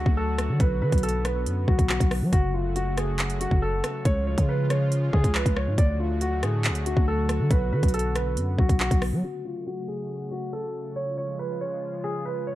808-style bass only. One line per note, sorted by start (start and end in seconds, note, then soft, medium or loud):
0.06 0.51 D2 loud
0.49 0.59 D3 loud
0.60 0.83 B1 loud
0.82 0.92 D3 loud
0.92 1.48 B1 loud
1.46 1.67 F#2 loud
1.68 1.78 B1 loud
1.79 1.99 B1 loud
2.00 2.23 B1 loud
2.22 2.32 F#3 loud
2.33 3.47 F#1 loud
3.51 3.82 F#1 loud
4.05 4.36 C#2 loud
4.38 5.10 C#3 loud
5.13 5.24 C#3 loud
5.24 5.45 C#2 loud
5.46 5.69 C#2 loud
5.67 5.77 G#2 loud
5.78 6.44 D2 loud
6.43 6.71 A2 loud
6.70 6.95 D2 loud
6.97 7.41 D2 loud
7.40 7.50 D3 loud
7.51 7.74 B1 loud
7.72 7.83 D3 loud
7.83 8.38 B1 loud
8.37 8.57 F#2 loud
8.59 8.69 B1 loud
8.69 8.90 B1 loud
8.91 9.14 B1 loud
9.13 9.23 F#3 loud